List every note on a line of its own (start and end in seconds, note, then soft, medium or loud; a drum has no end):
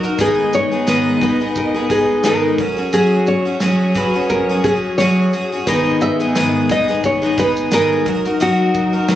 0.00 0.17 F#2 medium
0.00 0.17 A#2 medium
0.00 0.17 F#3 medium
0.00 2.55 D#4 medium
0.00 0.22 A#4 medium
0.00 0.19 A#4 medium
0.00 0.17 A#5 loud
0.00 shaker soft
0.04 0.19 D#4 soft
0.04 0.20 F#4 medium
0.19 2.56 G#2 medium
0.19 0.72 G#2 medium
0.19 0.72 D#3 medium
0.19 2.56 G#3 medium
0.19 0.73 G#3 medium
0.19 2.56 B3 medium
0.19 0.72 B3 medium
0.19 0.71 D#4 medium
0.19 0.70 G#4 medium
0.19 0.55 G#4 medium
0.19 2.56 D#5 medium
0.19 kick loud
0.19 shaker medium
0.53 1.22 C#5 loud
0.53 shaker medium
0.72 0.86 G#3 soft
0.72 0.86 B3 medium
0.72 0.87 D#4 soft
0.72 0.87 G#4 soft
0.87 1.21 G#2 medium
0.87 1.22 D#3 medium
0.87 1.20 G#3 medium
0.87 1.21 B3 medium
0.87 1.21 D#4 medium
0.87 1.22 G#4 medium
0.87 snare loud
0.87 shaker medium
1.21 1.40 G#3 medium
1.21 1.40 B3 medium
1.21 1.40 D#4 medium
1.21 1.39 G#4 medium
1.21 1.57 B4 medium
1.21 kick loud
1.21 shaker soft
1.40 1.75 G#3 soft
1.40 1.75 B3 medium
1.40 1.74 D#4 soft
1.40 1.73 G#4 medium
1.56 1.92 A#4 medium
1.56 kick medium
1.56 shaker medium
1.74 1.89 G#3 soft
1.74 1.89 B3 soft
1.74 1.90 D#4 soft
1.74 1.90 G#4 medium
1.90 2.23 G#3 medium
1.90 2.24 B3 medium
1.90 2.24 D#4 medium
1.90 2.26 G#4 medium
1.90 2.24 G#4 medium
1.90 kick loud
1.90 shaker medium
2.23 2.58 G#2 medium
2.23 2.58 D#3 medium
2.23 2.58 G#3 medium
2.23 2.59 B3 medium
2.23 2.59 D#4 medium
2.23 2.59 G#4 medium
2.23 2.96 A#4 medium
2.23 snare loud
2.23 shaker medium
2.58 5.64 F#2 medium
2.58 2.77 F#3 medium
2.58 5.64 F#3 medium
2.58 5.64 C#4 medium
2.58 2.78 C#4 medium
2.58 2.77 F#4 medium
2.58 8.03 G#4 medium
2.58 2.75 G#4 medium
2.58 5.64 C#5 medium
2.58 kick loud
2.58 shaker soft
2.77 2.92 C#4 soft
2.77 2.92 F#4 medium
2.77 2.92 G#4 medium
2.93 3.46 F#3 medium
2.93 3.46 C#4 medium
2.93 3.45 F#4 medium
2.93 3.29 G#4 loud
2.93 3.44 G#4 medium
2.93 shaker medium
3.27 3.92 C#5 loud
3.27 shaker medium
3.45 3.60 C#4 soft
3.45 3.60 F#4 soft
3.45 3.61 G#4 medium
3.60 3.93 F#3 medium
3.60 3.94 C#4 medium
3.60 3.95 F#4 medium
3.60 3.96 G#4 medium
3.60 snare loud
3.60 shaker medium
3.95 4.14 F#3 medium
3.95 4.14 C#4 medium
3.95 4.14 F#4 medium
3.95 4.13 G#4 medium
3.95 4.29 B4 medium
3.95 kick medium
3.95 shaker medium
4.14 4.49 C#4 soft
4.14 4.49 F#4 soft
4.14 4.48 G#4 medium
4.30 4.65 A#4 medium
4.30 kick medium
4.30 shaker medium
4.49 4.64 C#4 soft
4.49 4.65 F#4 medium
4.49 4.64 G#4 medium
4.64 4.98 F#3 medium
4.64 4.99 C#4 medium
4.64 4.99 F#4 medium
4.64 4.74 G#4 medium
4.64 4.99 G#4 medium
4.64 kick loud
4.64 shaker medium
4.98 5.32 F#3 medium
4.98 5.33 C#4 medium
4.98 5.34 F#4 medium
4.98 5.34 G#4 medium
4.98 5.67 C#5 medium
4.98 snare loud
4.98 shaker medium
5.33 5.51 F#3 medium
5.33 5.52 C#4 medium
5.33 5.52 F#4 medium
5.33 5.51 G#4 medium
5.33 shaker soft
5.52 5.68 C#4 soft
5.52 5.68 F#4 medium
5.52 5.67 G#4 medium
5.67 6.20 G#2 medium
5.67 8.04 G#2 medium
5.67 6.20 D#3 medium
5.67 8.04 D#3 medium
5.67 6.20 G#3 medium
5.67 8.04 B3 medium
5.67 6.20 B3 medium
5.67 6.19 D#4 medium
5.67 6.19 G#4 medium
5.67 6.01 B4 loud
5.67 kick loud
5.67 shaker medium
6.01 6.66 E5 loud
6.01 shaker medium
6.20 6.35 G#3 soft
6.20 6.35 B3 soft
6.20 6.35 D#4 soft
6.20 6.35 G#4 soft
6.20 shaker soft
6.35 6.69 G#2 medium
6.35 6.70 D#3 medium
6.35 6.68 G#3 medium
6.35 6.69 B3 medium
6.35 6.70 G#4 medium
6.35 snare loud
6.35 shaker medium
6.69 6.88 G#3 medium
6.69 6.88 B3 medium
6.69 6.87 D#4 medium
6.69 6.87 G#4 medium
6.69 7.05 D#5 loud
6.69 kick loud
6.69 shaker medium
6.88 7.23 G#3 soft
6.88 7.22 B3 soft
6.88 7.22 D#4 medium
6.88 7.21 G#4 soft
6.88 snare soft
7.04 7.39 C#5 medium
7.04 kick medium
7.04 shaker medium
7.22 7.36 G#3 soft
7.22 7.37 B3 medium
7.22 7.38 D#4 medium
7.22 7.37 G#4 medium
7.37 7.72 G#3 medium
7.37 7.72 B3 medium
7.37 7.72 D#4 medium
7.37 7.73 G#4 medium
7.37 7.48 B4 loud
7.37 kick loud
7.37 shaker medium
7.57 shaker medium
7.71 8.06 G#2 medium
7.71 8.06 D#3 medium
7.71 8.05 G#3 medium
7.71 8.06 B3 medium
7.71 8.06 D#4 medium
7.71 8.07 G#4 medium
7.71 8.42 A#4 loud
7.71 snare loud
7.71 shaker medium
8.06 9.15 F#2 medium
8.06 8.25 F#3 medium
8.06 9.15 F#3 medium
8.06 9.15 A#3 medium
8.06 9.15 D#4 medium
8.06 8.25 D#4 medium
8.06 8.25 F#4 medium
8.06 9.15 A#4 medium
8.06 8.24 A#4 medium
8.06 kick loud
8.06 shaker soft
8.25 8.39 D#4 soft
8.25 8.40 F#4 medium
8.25 8.40 A#4 medium
8.25 shaker soft
8.40 8.93 F#3 medium
8.40 8.93 D#4 medium
8.40 8.93 F#4 medium
8.40 9.15 F#4 loud
8.40 8.92 A#4 medium
8.40 shaker medium
8.75 kick medium
8.75 shaker medium
8.93 9.07 D#4 soft
8.93 9.08 F#4 soft
8.93 9.08 A#4 medium
9.08 9.15 F#3 medium
9.08 9.15 D#4 medium
9.08 9.15 F#4 medium
9.08 9.15 A#4 medium
9.08 snare loud
9.08 shaker medium